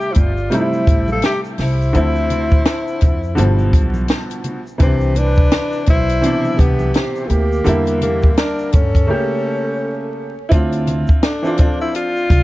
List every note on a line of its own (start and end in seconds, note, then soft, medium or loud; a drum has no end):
0.00 0.29 C3 medium
0.00 0.29 G3 medium
0.00 0.30 A3 medium
0.00 0.30 E4 medium
0.00 0.14 G4 loud
0.00 0.13 E5 medium
0.00 shaker soft
0.11 0.21 E4 medium
0.11 0.19 C5 medium
0.11 closed hi-hat medium
0.16 0.48 G1 medium
0.16 0.57 F4 medium
0.16 0.54 D5 medium
0.16 kick medium
0.16 low conga medium
0.16 shaker soft
0.37 shaker soft
0.50 1.71 C3 medium
0.50 1.72 G3 medium
0.50 1.73 A3 medium
0.50 0.60 D#4 medium
0.50 1.09 C5 medium
0.50 closed hi-hat medium
0.50 shaker medium
0.55 1.10 E4 medium
0.60 1.77 E4 medium
0.73 high conga soft
0.73 shaker soft
0.87 1.19 A1 medium
0.87 kick loud
0.87 closed hi-hat medium
0.87 shaker soft
1.08 1.23 F5 medium
1.08 high conga medium
1.08 shaker soft
1.12 1.24 A4 medium
1.22 1.41 G4 medium
1.22 1.33 E5 medium
1.22 snare medium
1.22 closed hi-hat medium
1.22 shaker medium
1.44 shaker soft
1.58 1.91 C2 medium
1.58 3.70 C5 medium
1.58 snare soft
1.58 open hi-hat soft
1.58 low conga soft
1.58 shaker soft
1.62 3.71 E4 loud
1.82 shaker soft
1.93 2.58 D2 loud
1.93 3.14 D3 medium
1.93 3.15 F3 medium
1.93 3.16 C4 medium
1.93 closed hi-hat medium
1.93 shaker medium
1.97 3.16 E4 medium
2.16 shaker soft
2.30 closed hi-hat medium
2.30 low conga medium
2.30 shaker soft
2.51 kick medium
2.51 shaker soft
2.65 snare loud
2.65 closed hi-hat medium
2.65 shaker medium
2.87 shaker soft
3.01 3.34 F2 medium
3.01 kick loud
3.01 closed hi-hat medium
3.01 low conga medium
3.01 shaker soft
3.23 shaker soft
3.35 3.69 G1 loud
3.35 4.58 B2 medium
3.35 4.57 D3 medium
3.35 4.58 G3 medium
3.35 closed hi-hat medium
3.35 shaker medium
3.39 4.59 F3 loud
3.59 high conga soft
3.59 shaker soft
3.73 4.05 B1 medium
3.73 kick loud
3.73 closed hi-hat medium
3.73 shaker soft
3.94 high conga medium
3.94 shaker soft
4.08 snare medium
4.08 closed hi-hat medium
4.08 shaker medium
4.30 closed hi-hat medium
4.30 shaker soft
4.44 closed hi-hat medium
4.44 low conga medium
4.44 shaker soft
4.67 shaker soft
4.78 5.44 C2 loud
4.78 6.00 C3 medium
4.78 6.00 E3 medium
4.78 5.20 C4 loud
4.78 5.17 G4 medium
4.78 6.01 B4 medium
4.78 kick loud
4.78 closed hi-hat medium
4.78 shaker medium
4.82 6.02 D4 medium
5.00 shaker soft
5.15 5.88 D4 loud
5.15 5.86 B4 loud
5.15 closed hi-hat medium
5.15 low conga medium
5.15 shaker soft
5.35 kick medium
5.35 shaker soft
5.51 snare loud
5.51 closed hi-hat loud
5.51 shaker medium
5.72 shaker soft
5.86 6.19 B1 medium
5.86 6.61 E4 loud
5.86 6.59 C5 loud
5.86 kick loud
5.86 closed hi-hat medium
5.86 low conga medium
5.86 shaker soft
6.08 closed hi-hat medium
6.08 shaker soft
6.21 7.44 B2 medium
6.21 7.43 C3 medium
6.21 7.43 E3 medium
6.21 closed hi-hat medium
6.21 shaker medium
6.25 7.45 D4 medium
6.44 high conga soft
6.44 shaker soft
6.57 6.91 C2 medium
6.57 6.98 B3 medium
6.57 6.93 G4 medium
6.57 kick medium
6.57 closed hi-hat medium
6.57 shaker soft
6.79 high conga medium
6.79 shaker medium
6.93 7.29 C4 medium
6.93 7.26 G4 medium
6.93 snare loud
6.93 closed hi-hat medium
6.93 shaker medium
7.15 shaker soft
7.25 7.33 A3 medium
7.25 7.29 F4 medium
7.25 7.99 G4 medium
7.29 7.62 D2 medium
7.29 8.02 A#3 loud
7.29 closed hi-hat medium
7.29 low conga medium
7.29 shaker soft
7.52 shaker soft
7.64 8.30 E2 loud
7.64 8.86 D3 medium
7.64 8.86 G3 medium
7.64 8.87 A#3 medium
7.64 closed hi-hat medium
7.64 shaker medium
7.68 8.88 E4 medium
7.86 closed hi-hat soft
7.86 shaker soft
7.99 8.35 A#3 medium
7.99 8.34 G4 medium
7.99 closed hi-hat medium
7.99 low conga medium
7.99 shaker soft
8.22 kick medium
8.22 shaker soft
8.35 8.76 D4 medium
8.35 8.73 A#4 medium
8.35 snare loud
8.35 closed hi-hat medium
8.35 shaker medium
8.59 shaker medium
8.71 9.05 G2 medium
8.71 10.16 C#4 medium
8.71 10.15 A4 medium
8.71 kick loud
8.71 closed hi-hat medium
8.71 low conga medium
8.71 shaker soft
8.95 kick medium
8.95 closed hi-hat soft
8.95 shaker soft
9.07 10.28 C#3 medium
9.07 10.29 A3 medium
9.07 10.30 A#3 medium
9.07 10.30 G4 medium
10.49 11.03 D2 loud
10.49 11.25 C4 medium
10.49 11.26 D4 medium
10.49 11.25 E4 medium
10.49 kick loud
10.49 closed hi-hat medium
10.49 shaker medium
10.53 11.27 F4 medium
10.72 closed hi-hat soft
10.72 shaker soft
10.87 closed hi-hat medium
10.87 low conga medium
10.87 shaker soft
11.07 kick medium
11.07 shaker soft
11.22 11.77 D4 medium
11.22 11.76 A4 medium
11.22 snare loud
11.22 closed hi-hat medium
11.22 shaker medium
11.42 11.55 E3 medium
11.42 11.56 C4 medium
11.42 11.57 D4 medium
11.42 shaker medium
11.47 11.57 F4 medium
11.57 12.43 F3 medium
11.57 12.43 C4 medium
11.57 12.43 D4 medium
11.57 12.43 F4 medium
11.57 kick loud
11.57 closed hi-hat medium
11.57 low conga medium
11.57 shaker soft
11.80 11.94 E4 medium
11.80 11.93 C5 medium
11.80 shaker soft
11.94 12.43 F4 loud
11.94 12.43 D5 medium
11.94 closed hi-hat medium
11.94 shaker medium
12.17 shaker soft
12.30 12.43 C2 medium
12.30 kick medium
12.30 closed hi-hat medium
12.30 high conga soft
12.30 shaker medium